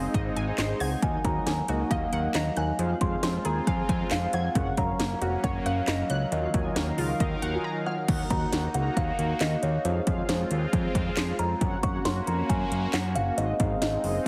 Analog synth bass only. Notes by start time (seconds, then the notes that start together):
0.14 G#1
0.36 G#1
0.58 G#1
0.80 C#2
1.03 D#2
1.25 D#2
1.46 D#2
1.69 C#2
1.91 D#2
2.13 D#2
2.35 D#2
2.57 D#2
2.79 F2
3.01 F2
3.23 F2
3.45 D#2
3.67 F2
3.89 F2
4.11 F2
4.33 F2
4.55 F#1
4.78 F#1
5.00 F#1
5.21 F1
5.44 F#1
5.66 F#1
5.88 F#1
6.10 C#2
6.32 D#2
6.54 D#2
6.76 D#2
6.98 C#2
7.20 D#2
7.42 D#2
8.08 D#2
8.31 D#2
8.52 D#2
8.75 C#2
8.97 D#2
9.19 D#2
9.41 D#2
9.63 D#2
9.85 F2
10.07 F2
10.29 F2
10.51 D#2
10.73 F2
10.95 F2
11.17 F2
11.39 F2
11.61 F#2
11.83 F#2
12.05 F#2
12.27 F2
12.49 F#2
12.72 F#2
12.94 F#2
13.16 F#1
13.38 G#1
13.60 G#1
13.82 G#1
14.04 F#1